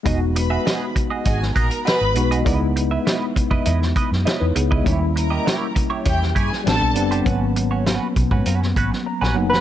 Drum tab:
HH |x-x-x-x-x-xxx-xx|x-x-x-x-x-x-x-x-|x-x-x-x-x-x-x-xx|x-x-x-x-x-x-----|
SD |----o----o--o---|----o----o-oo---|----o----o-oo---|----o----o-o-o-o|
BD |o-----o-o-o-----|o-----oo--o----o|o-----o-o-o-----|o-----oo--o-----|